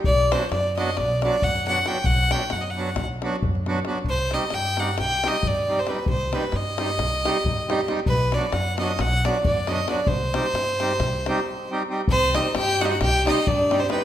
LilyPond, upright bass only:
\new Staff \with { instrumentName = "Upright bass" } { \clef bass \time 9/8 \tempo 4. = 90 b,,4 fis,4 b,,4 fis,4. | b,,4 fis,4 b,,4 fis,4. | c,4 g,4 c,4 g,4. | c,4 g,4 c,4 g,4. |
b,,4 fis,4 b,,4 fis,4. | c,4 g,4 c,4 r4. | c,4 g,4 c,4 g,4. | }